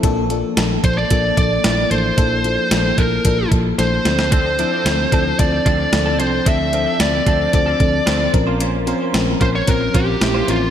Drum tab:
HH |x-x-x-x-x-x-x-x-|x-x-x-x-x-x-x-x-|x-x-x-x-x-x-x-x-|x-x-x-x-x-x-x-x-|
SD |----o-------o---|----o-------o-oo|----o-------o---|----o-------o---|
BD |o-----o-o-o-----|o-----o-o-o-----|o-----o-o-o-----|o-----o-o-o---o-|

HH |x-x-x-x-x-x-x-x-|
SD |----o-------o---|
BD |------o-o-o-----|